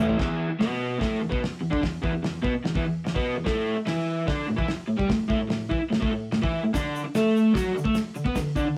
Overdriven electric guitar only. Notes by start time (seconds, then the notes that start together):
Already playing: A2 E3 A3
0.00 C#4 E4
0.17 E2 E3
0.49 muted overdriven electric guitar stroke
0.59 B2 B3
0.99 A2 A3
1.20 E2
1.30 B2 B3
1.40 muted overdriven electric guitar stroke
1.61 E2
1.70 D3 D4
1.81 E2
2.02 E2 E3
2.13 E2
2.23 E2
2.43 B2 B3
2.54 muted overdriven electric guitar stroke
2.65 E2
2.75 E2 E3
2.85 E2
3.05 E2
3.14 B2 B3
3.36 E2
3.44 A2 A3
3.76 muted overdriven electric guitar stroke
3.86 E3 E4
4.26 D3 D4
4.48 A2
4.57 E3 E4
4.69 muted overdriven electric guitar stroke
4.88 A2
4.97 G3 G4
5.08 A2
5.29 A2 A3
5.39 A2
5.49 A2
5.70 E3 E4
5.81 muted overdriven electric guitar stroke
5.90 A2
6.00 A2 A3
6.12 A2
6.32 A2
6.42 E3 E4
6.64 A2
6.73 D3 D4
7.05 muted overdriven electric guitar stroke
7.15 A3 A4
7.54 F#3 F#4
7.75 D3
7.84 A3 A4
7.96 muted overdriven electric guitar stroke
8.16 D3
8.24 B3 B4
8.35 D3
8.55 D3 D4
8.66 D3